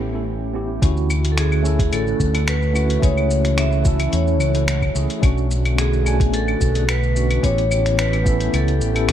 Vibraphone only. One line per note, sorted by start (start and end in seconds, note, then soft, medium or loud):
1.32 1.38 A4 medium
1.39 1.95 G#4 medium
1.94 2.50 A4 medium
2.49 3.05 B4 medium
3.03 3.60 C#5 loud
3.59 4.15 E5 loud
4.14 4.92 C#5 medium
5.78 6.35 G#4 medium
6.34 6.90 A4 medium
6.89 7.40 B4 medium
7.44 7.91 C#5 loud
7.93 7.99 C#5 medium
7.99 8.55 B4 loud
8.55 9.12 A4 medium